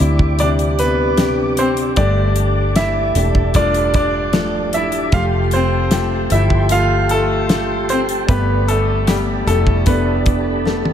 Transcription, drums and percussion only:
0.19 kick
0.39 closed hi-hat
0.59 closed hi-hat
0.79 closed hi-hat
1.17 snare, closed hi-hat
1.57 closed hi-hat
1.77 closed hi-hat
1.96 kick, closed hi-hat
2.36 closed hi-hat
2.76 snare, closed hi-hat
3.15 closed hi-hat
3.35 kick
3.54 kick, closed hi-hat
3.74 closed hi-hat
3.94 kick, closed hi-hat
4.33 snare, closed hi-hat
4.73 closed hi-hat
4.92 closed hi-hat
5.12 kick, closed hi-hat
5.51 closed hi-hat
5.91 snare, closed hi-hat
6.30 closed hi-hat
6.50 kick
6.69 closed hi-hat
7.09 closed hi-hat
7.49 snare, closed hi-hat
7.89 closed hi-hat
8.09 closed hi-hat
8.29 kick, closed hi-hat
8.69 closed hi-hat
9.07 snare, closed hi-hat
9.47 closed hi-hat
9.67 kick
9.86 kick, closed hi-hat
10.26 kick, closed hi-hat
10.66 snare
10.85 high tom

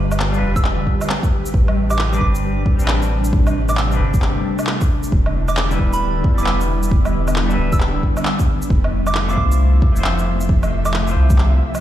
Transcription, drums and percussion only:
0.12 low woodblock, shaker
0.20 clap
0.34 shaker
0.56 kick, shaker
0.65 clap
0.87 kick
1.01 low woodblock, shaker
1.10 clap
1.23 kick, shaker
1.46 shaker
1.54 kick
1.68 low woodblock
1.90 low woodblock, shaker
1.99 clap
2.13 shaker
2.21 kick
2.35 shaker
2.66 kick
2.79 shaker
2.88 clap
3.02 shaker
3.25 shaker
3.33 kick
3.47 low woodblock, shaker
3.69 low woodblock, shaker
3.77 clap
3.92 shaker
4.14 kick, shaker
4.22 clap
4.59 low woodblock, shaker
4.67 clap
4.81 kick, shaker
5.03 shaker
5.12 kick
5.26 low woodblock
5.48 low woodblock, shaker
5.57 clap
5.71 shaker
5.80 kick
5.93 shaker
6.24 kick
6.38 shaker
6.46 clap
6.61 shaker
6.83 shaker
6.91 kick
7.05 low woodblock, shaker
7.28 low woodblock, shaker
7.36 clap
7.50 shaker
7.72 kick, shaker
7.80 clap
8.03 kick
8.17 low woodblock, shaker
8.25 clap
8.39 kick, shaker
8.62 shaker
8.70 kick
8.84 low woodblock
9.07 low woodblock, shaker
9.15 clap
9.29 shaker
9.37 kick
9.52 shaker
9.82 kick
9.96 shaker
10.04 clap
10.19 shaker
10.41 shaker
10.49 kick
10.63 low woodblock, shaker
10.85 low woodblock, shaker
10.94 clap
11.08 shaker
11.30 kick, shaker
11.38 clap
11.75 low woodblock, shaker

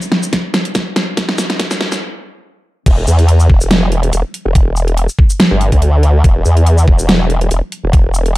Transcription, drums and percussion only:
0.02 shaker
0.12 snare
0.23 shaker
0.33 kick, snare, closed hi-hat
0.54 snare, closed hi-hat
0.65 closed hi-hat
0.75 kick, snare, closed hi-hat, shaker
0.96 snare, closed hi-hat
1.17 kick, snare, closed hi-hat
1.29 snare
1.38 snare, shaker
1.50 snare, closed hi-hat
1.59 kick, snare, closed hi-hat
1.71 snare, shaker
1.81 snare
1.92 snare, shaker
2.86 kick, closed hi-hat, crash
3.07 shaker
3.19 closed hi-hat
3.29 closed hi-hat
3.40 shaker
3.50 kick
3.61 shaker
3.71 snare, closed hi-hat
3.92 closed hi-hat
4.03 closed hi-hat
4.13 closed hi-hat, shaker
4.34 closed hi-hat
4.55 kick, closed hi-hat
4.76 shaker
4.88 closed hi-hat
4.97 closed hi-hat
5.09 shaker
5.19 kick
5.30 shaker
5.40 snare, closed hi-hat
5.61 closed hi-hat
5.72 kick, closed hi-hat
5.82 closed hi-hat
6.03 closed hi-hat
6.24 kick, closed hi-hat
6.45 shaker
6.57 closed hi-hat
6.67 closed hi-hat
6.78 shaker
6.88 kick
6.99 shaker
7.09 snare, closed hi-hat
7.30 closed hi-hat
7.41 closed hi-hat
7.51 closed hi-hat, shaker
7.72 closed hi-hat
7.93 kick, closed hi-hat
8.14 shaker
8.26 closed hi-hat

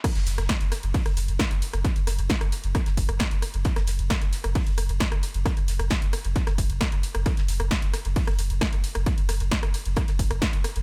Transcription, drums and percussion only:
0.04 kick, cross-stick, closed hi-hat, crash, ride
0.15 snare, closed hi-hat, ride
0.26 snare, closed hi-hat, open hi-hat, ride
0.38 cross-stick, closed hi-hat, ride
0.49 kick, snare, closed hi-hat, ride
0.61 closed hi-hat, ride
0.72 cross-stick, snare, closed hi-hat, open hi-hat, ride
0.83 closed hi-hat, ride
0.94 kick, closed hi-hat, open hi-hat, ride
1.06 cross-stick, closed hi-hat, ride
1.17 closed hi-hat, open hi-hat, ride
1.28 closed hi-hat, ride
1.39 kick, cross-stick, snare, closed hi-hat, ride
1.51 closed hi-hat, ride
1.62 closed hi-hat, open hi-hat, ride
1.73 cross-stick, closed hi-hat, ride
1.84 kick, closed hi-hat, ride
1.96 closed hi-hat, ride
2.07 cross-stick, snare, closed hi-hat, open hi-hat, ride
2.18 closed hi-hat, ride
2.29 kick, snare, closed hi-hat, ride
2.41 cross-stick, closed hi-hat, ride
2.52 closed hi-hat, open hi-hat, ride
2.64 closed hi-hat, ride
2.75 kick, cross-stick, closed hi-hat, ride
2.86 snare, closed hi-hat, ride
2.97 kick, closed hi-hat, open hi-hat, ride
3.09 cross-stick, closed hi-hat, ride
3.19 kick, snare, closed hi-hat, ride
3.31 closed hi-hat, ride
3.42 cross-stick, closed hi-hat, open hi-hat, ride
3.54 closed hi-hat, ride
3.65 kick, closed hi-hat, ride
3.76 cross-stick, snare, closed hi-hat, ride
3.87 snare, closed hi-hat, open hi-hat, ride
3.99 closed hi-hat, ride
4.10 kick, cross-stick, snare, closed hi-hat, ride
4.21 closed hi-hat, ride
4.33 snare, closed hi-hat, open hi-hat, ride
4.44 cross-stick, closed hi-hat, ride
4.55 kick, closed hi-hat, open hi-hat, ride
4.67 closed hi-hat, ride
4.78 cross-stick, closed hi-hat, open hi-hat, ride
4.89 closed hi-hat, ride
5.00 kick, snare, closed hi-hat, ride
5.12 cross-stick, closed hi-hat, ride
5.23 closed hi-hat, open hi-hat, ride
5.34 closed hi-hat, ride
5.46 kick, cross-stick, closed hi-hat, ride
5.57 closed hi-hat, ride
5.68 snare, closed hi-hat, open hi-hat, ride
5.79 cross-stick, closed hi-hat, ride
5.90 kick, snare, closed hi-hat, ride
6.02 closed hi-hat, ride
6.13 cross-stick, closed hi-hat, open hi-hat, ride
6.24 closed hi-hat, ride
6.36 kick, closed hi-hat, ride
6.47 cross-stick, snare, closed hi-hat, ride
6.58 kick, closed hi-hat, open hi-hat, ride
6.70 closed hi-hat, ride
6.81 kick, cross-stick, snare, closed hi-hat, ride
6.92 closed hi-hat, ride
7.03 closed hi-hat, open hi-hat, ride
7.15 cross-stick, closed hi-hat, ride
7.26 kick, cross-stick, closed hi-hat, ride
7.37 snare, closed hi-hat, ride
7.48 snare, closed hi-hat, open hi-hat, ride
7.60 cross-stick, closed hi-hat, ride
7.71 kick, snare, closed hi-hat, ride
7.82 closed hi-hat, ride
7.93 cross-stick, snare, closed hi-hat, open hi-hat, ride
8.05 closed hi-hat, ride
8.16 kick, closed hi-hat, open hi-hat, ride
8.27 cross-stick, closed hi-hat, ride
8.39 closed hi-hat, open hi-hat, ride
8.50 closed hi-hat, ride
8.61 kick, cross-stick, snare, closed hi-hat, ride
8.73 closed hi-hat, ride
8.84 closed hi-hat, open hi-hat, ride
8.95 cross-stick, closed hi-hat, ride
9.06 kick, closed hi-hat, ride
9.18 closed hi-hat, ride
9.29 cross-stick, snare, closed hi-hat, open hi-hat, ride
9.40 closed hi-hat, ride
9.51 kick, snare, closed hi-hat, ride
9.63 cross-stick, closed hi-hat, ride
9.74 closed hi-hat, open hi-hat, ride
9.85 closed hi-hat, ride
9.96 kick, cross-stick, closed hi-hat, ride
10.07 snare, closed hi-hat, ride
10.19 kick, closed hi-hat, open hi-hat, ride
10.31 cross-stick, closed hi-hat, ride
10.41 kick, snare, closed hi-hat, ride
10.53 closed hi-hat, ride
10.64 cross-stick, closed hi-hat, open hi-hat, ride
10.76 closed hi-hat, ride

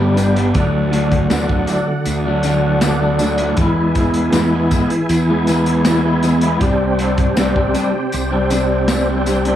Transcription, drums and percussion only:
0.17 closed hi-hat, tambourine
0.36 closed hi-hat
0.54 kick, closed hi-hat, tambourine
0.93 closed hi-hat, tambourine
1.12 kick, closed hi-hat
1.30 snare, closed hi-hat, tambourine
1.49 kick
1.67 closed hi-hat, tambourine
2.05 closed hi-hat, tambourine
2.43 closed hi-hat, tambourine
2.81 snare, closed hi-hat, tambourine
3.19 closed hi-hat, tambourine
3.38 closed hi-hat
3.57 kick, closed hi-hat, tambourine
3.95 kick, closed hi-hat, tambourine
4.14 closed hi-hat
4.32 snare, closed hi-hat, tambourine
4.71 kick, closed hi-hat, tambourine
4.90 closed hi-hat
5.09 closed hi-hat, tambourine
5.47 closed hi-hat, tambourine
5.66 closed hi-hat
5.85 snare, closed hi-hat, tambourine
6.23 closed hi-hat, tambourine
6.41 closed hi-hat
6.61 kick, closed hi-hat, tambourine
6.99 closed hi-hat, tambourine
7.18 kick, closed hi-hat
7.37 snare, closed hi-hat, tambourine
7.56 kick
7.75 closed hi-hat, tambourine
8.12 closed hi-hat, tambourine
8.50 closed hi-hat, tambourine
8.88 snare, closed hi-hat, tambourine
9.26 closed hi-hat, tambourine
9.45 closed hi-hat

